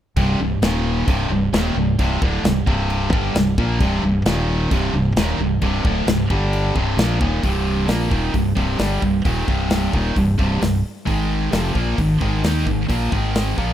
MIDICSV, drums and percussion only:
0, 0, Header, 1, 2, 480
1, 0, Start_track
1, 0, Key_signature, -3, "minor"
1, 0, Tempo, 454545
1, 176, Time_signature, 4, 2, 24, 8
1, 14501, End_track
2, 0, Start_track
2, 0, Title_t, "Drums"
2, 176, Note_on_c, 9, 36, 99
2, 176, Note_on_c, 9, 49, 60
2, 281, Note_off_c, 9, 36, 0
2, 282, Note_off_c, 9, 49, 0
2, 656, Note_on_c, 9, 49, 60
2, 664, Note_on_c, 9, 38, 115
2, 762, Note_off_c, 9, 49, 0
2, 769, Note_off_c, 9, 38, 0
2, 1138, Note_on_c, 9, 36, 104
2, 1138, Note_on_c, 9, 49, 63
2, 1244, Note_off_c, 9, 36, 0
2, 1244, Note_off_c, 9, 49, 0
2, 1621, Note_on_c, 9, 49, 63
2, 1628, Note_on_c, 9, 38, 116
2, 1726, Note_off_c, 9, 49, 0
2, 1734, Note_off_c, 9, 38, 0
2, 2101, Note_on_c, 9, 49, 61
2, 2102, Note_on_c, 9, 36, 105
2, 2206, Note_off_c, 9, 49, 0
2, 2208, Note_off_c, 9, 36, 0
2, 2343, Note_on_c, 9, 36, 114
2, 2449, Note_off_c, 9, 36, 0
2, 2582, Note_on_c, 9, 49, 61
2, 2590, Note_on_c, 9, 38, 110
2, 2688, Note_off_c, 9, 49, 0
2, 2695, Note_off_c, 9, 38, 0
2, 2822, Note_on_c, 9, 36, 94
2, 2928, Note_off_c, 9, 36, 0
2, 3062, Note_on_c, 9, 49, 56
2, 3168, Note_off_c, 9, 49, 0
2, 3303, Note_on_c, 9, 36, 111
2, 3409, Note_off_c, 9, 36, 0
2, 3539, Note_on_c, 9, 49, 57
2, 3547, Note_on_c, 9, 38, 116
2, 3645, Note_off_c, 9, 49, 0
2, 3652, Note_off_c, 9, 38, 0
2, 3780, Note_on_c, 9, 36, 109
2, 3886, Note_off_c, 9, 36, 0
2, 4016, Note_on_c, 9, 49, 53
2, 4019, Note_on_c, 9, 36, 102
2, 4121, Note_off_c, 9, 49, 0
2, 4125, Note_off_c, 9, 36, 0
2, 4493, Note_on_c, 9, 49, 65
2, 4501, Note_on_c, 9, 38, 118
2, 4599, Note_off_c, 9, 49, 0
2, 4606, Note_off_c, 9, 38, 0
2, 4975, Note_on_c, 9, 49, 62
2, 4977, Note_on_c, 9, 36, 112
2, 5081, Note_off_c, 9, 49, 0
2, 5083, Note_off_c, 9, 36, 0
2, 5454, Note_on_c, 9, 49, 61
2, 5461, Note_on_c, 9, 38, 118
2, 5559, Note_off_c, 9, 49, 0
2, 5567, Note_off_c, 9, 38, 0
2, 5930, Note_on_c, 9, 49, 60
2, 5935, Note_on_c, 9, 36, 93
2, 6035, Note_off_c, 9, 49, 0
2, 6040, Note_off_c, 9, 36, 0
2, 6175, Note_on_c, 9, 36, 107
2, 6281, Note_off_c, 9, 36, 0
2, 6414, Note_on_c, 9, 49, 62
2, 6421, Note_on_c, 9, 38, 117
2, 6519, Note_off_c, 9, 49, 0
2, 6527, Note_off_c, 9, 38, 0
2, 6655, Note_on_c, 9, 36, 103
2, 6761, Note_off_c, 9, 36, 0
2, 6895, Note_on_c, 9, 49, 57
2, 7001, Note_off_c, 9, 49, 0
2, 7135, Note_on_c, 9, 36, 101
2, 7240, Note_off_c, 9, 36, 0
2, 7375, Note_on_c, 9, 49, 59
2, 7382, Note_on_c, 9, 38, 120
2, 7480, Note_off_c, 9, 49, 0
2, 7488, Note_off_c, 9, 38, 0
2, 7612, Note_on_c, 9, 36, 108
2, 7717, Note_off_c, 9, 36, 0
2, 7851, Note_on_c, 9, 36, 99
2, 7854, Note_on_c, 9, 46, 51
2, 7957, Note_off_c, 9, 36, 0
2, 7960, Note_off_c, 9, 46, 0
2, 8324, Note_on_c, 9, 46, 58
2, 8331, Note_on_c, 9, 38, 109
2, 8430, Note_off_c, 9, 46, 0
2, 8437, Note_off_c, 9, 38, 0
2, 8568, Note_on_c, 9, 36, 94
2, 8674, Note_off_c, 9, 36, 0
2, 8808, Note_on_c, 9, 36, 87
2, 8809, Note_on_c, 9, 46, 59
2, 8914, Note_off_c, 9, 36, 0
2, 8915, Note_off_c, 9, 46, 0
2, 9047, Note_on_c, 9, 36, 96
2, 9153, Note_off_c, 9, 36, 0
2, 9282, Note_on_c, 9, 46, 59
2, 9289, Note_on_c, 9, 38, 102
2, 9387, Note_off_c, 9, 46, 0
2, 9395, Note_off_c, 9, 38, 0
2, 9529, Note_on_c, 9, 36, 92
2, 9634, Note_off_c, 9, 36, 0
2, 9771, Note_on_c, 9, 36, 98
2, 9773, Note_on_c, 9, 46, 57
2, 9876, Note_off_c, 9, 36, 0
2, 9878, Note_off_c, 9, 46, 0
2, 10010, Note_on_c, 9, 36, 103
2, 10116, Note_off_c, 9, 36, 0
2, 10245, Note_on_c, 9, 46, 57
2, 10253, Note_on_c, 9, 38, 104
2, 10351, Note_off_c, 9, 46, 0
2, 10358, Note_off_c, 9, 38, 0
2, 10491, Note_on_c, 9, 36, 88
2, 10596, Note_off_c, 9, 36, 0
2, 10733, Note_on_c, 9, 36, 90
2, 10736, Note_on_c, 9, 46, 51
2, 10838, Note_off_c, 9, 36, 0
2, 10842, Note_off_c, 9, 46, 0
2, 10972, Note_on_c, 9, 36, 91
2, 11078, Note_off_c, 9, 36, 0
2, 11214, Note_on_c, 9, 46, 56
2, 11221, Note_on_c, 9, 38, 100
2, 11320, Note_off_c, 9, 46, 0
2, 11327, Note_off_c, 9, 38, 0
2, 11693, Note_on_c, 9, 36, 92
2, 11694, Note_on_c, 9, 46, 52
2, 11799, Note_off_c, 9, 36, 0
2, 11800, Note_off_c, 9, 46, 0
2, 12171, Note_on_c, 9, 46, 56
2, 12178, Note_on_c, 9, 38, 111
2, 12276, Note_off_c, 9, 46, 0
2, 12284, Note_off_c, 9, 38, 0
2, 12411, Note_on_c, 9, 36, 91
2, 12517, Note_off_c, 9, 36, 0
2, 12653, Note_on_c, 9, 36, 85
2, 12654, Note_on_c, 9, 46, 56
2, 12759, Note_off_c, 9, 36, 0
2, 12760, Note_off_c, 9, 46, 0
2, 12895, Note_on_c, 9, 36, 94
2, 13000, Note_off_c, 9, 36, 0
2, 13135, Note_on_c, 9, 46, 58
2, 13143, Note_on_c, 9, 38, 106
2, 13241, Note_off_c, 9, 46, 0
2, 13248, Note_off_c, 9, 38, 0
2, 13377, Note_on_c, 9, 36, 88
2, 13483, Note_off_c, 9, 36, 0
2, 13618, Note_on_c, 9, 36, 94
2, 13619, Note_on_c, 9, 46, 55
2, 13723, Note_off_c, 9, 36, 0
2, 13725, Note_off_c, 9, 46, 0
2, 13857, Note_on_c, 9, 36, 95
2, 13963, Note_off_c, 9, 36, 0
2, 14099, Note_on_c, 9, 46, 58
2, 14106, Note_on_c, 9, 38, 106
2, 14204, Note_off_c, 9, 46, 0
2, 14212, Note_off_c, 9, 38, 0
2, 14339, Note_on_c, 9, 36, 92
2, 14444, Note_off_c, 9, 36, 0
2, 14501, End_track
0, 0, End_of_file